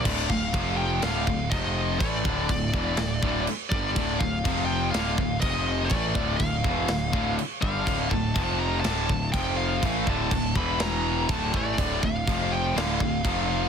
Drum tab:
CC |x-x-x-x-|x-x-x-x-|x-x-x-x-|x-x-x-x-|
SD |----o---|----o---|----o---|----o---|
BD |ooo--oo-|oooo-o-o|ooo--oo-|oooo-o-o|

CC |x-x-x-x-|x-x-x-x-|x-x-x-x-|
SD |----o---|----o---|----o---|
BD |ooo--oo-|oooo--oo|ooo--oo-|